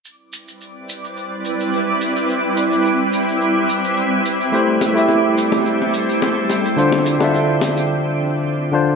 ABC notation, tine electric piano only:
X:1
M:4/4
L:1/16
Q:"Swing 16ths" 1/4=107
K:C
V:1 name="Tine electric piano"
z16 | z16 | [A,EGc]3 [A,EGe]12- [A,EGe] | [D,DFc]3 [D,DFe]8- [D,DFe]3 [D,DFc]2 |]